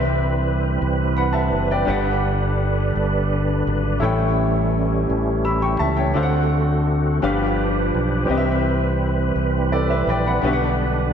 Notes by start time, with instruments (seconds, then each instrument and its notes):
Already playing: fingered electric bass C2, grand piano C3 C4 G4 B4 E5, french horn section D3 C4 E4 B4, tonewheel organ E3 G3 C4 B4
0.82 fingered electric bass C2
1.17 grand piano F#5 B5
1.33 grand piano E5 A5
1.52 fingered electric bass F#1
1.71 grand piano D5 G5
1.85 fingered electric bass G1, grand piano G2 D4 G4 B4, tonewheel organ D3 D4, french horn section D4 G4
1.90 grand piano F#5
2.96 fingered electric bass G1
3.67 fingered electric bass G#1
3.99 fingered electric bass A1, grand piano A2 E4 A4 C#5, tonewheel organ E3 A3 C#4, french horn section A3 C#4 E4 G4
4.04 grand piano G5
5.10 fingered electric bass A1
5.45 grand piano B5 E6
5.62 grand piano G5 C#6
5.79 fingered electric bass C#2, grand piano E5 A5
5.97 grand piano C#5 G5
6.14 fingered electric bass D2, tonewheel organ D3 C4 F#4, grand piano D3 D4 A4 C5 F5, french horn section C4 D4 F#4
6.23 grand piano F#5
7.22 fingered electric bass G1, grand piano G2 D4 G4 B4 F5, tonewheel organ F3 D4 G4 B4, french horn section D4 F4 B4
7.94 fingered electric bass B1
8.25 grand piano C3 C4 G4, tonewheel organ E3 G3 C4
8.30 fingered electric bass C2, french horn section C4 E4, grand piano B4 D#5
8.37 grand piano E5
9.36 fingered electric bass C2
9.72 grand piano A4 D5
9.90 grand piano B4 E5
10.07 fingered electric bass A#1, grand piano D5 G5
10.26 grand piano F#5 B5
10.42 fingered electric bass B1, grand piano B2 D4 G4 B4, tonewheel organ D3 D4, french horn section D4 G4
10.47 grand piano E5
10.53 grand piano F#5